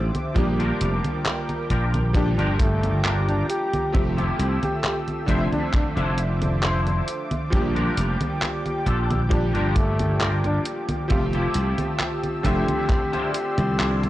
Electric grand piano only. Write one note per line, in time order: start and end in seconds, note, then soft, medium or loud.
0.00 0.27 D3 medium
0.00 0.27 F3 medium
0.00 0.27 A3 medium
0.00 0.28 C4 medium
0.00 0.28 E5 loud
0.34 2.06 F3 medium
0.34 2.06 G3 medium
0.34 2.06 A#3 medium
0.34 2.07 D4 medium
0.34 2.07 G4 medium
2.13 3.86 A#2 medium
2.13 3.85 F3 medium
2.13 3.85 G3 medium
2.13 3.86 D4 medium
2.13 3.86 G4 medium
3.92 5.19 F3 medium
3.92 5.19 A3 medium
3.92 5.20 C4 medium
3.92 5.21 G4 medium
3.92 5.20 E5 medium
5.26 7.43 D3 medium
5.26 7.43 F3 medium
5.26 7.44 A3 medium
5.26 7.44 C4 medium
5.26 7.45 E5 loud
7.50 9.22 F3 medium
7.50 9.23 G3 medium
7.50 9.23 A#3 medium
7.50 9.23 D4 medium
7.50 9.24 G4 medium
9.29 11.02 A#2 medium
9.29 11.01 F3 medium
9.29 11.01 G3 medium
9.29 11.02 D4 medium
9.29 11.02 G4 medium
11.08 12.35 F3 medium
11.08 12.36 A3 medium
11.08 12.36 C4 medium
11.08 12.37 G4 loud
11.08 12.36 E5 medium
12.43 14.09 D3 medium
12.43 14.09 F3 medium
12.43 14.09 A3 medium
12.43 14.09 C4 medium
12.43 14.09 E5 loud